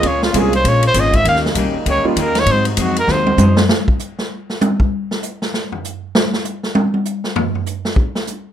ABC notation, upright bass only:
X:1
M:4/4
L:1/8
Q:"Swing" 1/4=197
K:Abmix
V:1 name="Upright bass" clef=bass
D,,2 C,,2 B,,,2 A,,,2 | E,,2 C,, z D,, z E,,2 | A,,2 F,,2 E,,2 G,,2 | z8 |
z8 | z8 | z8 |]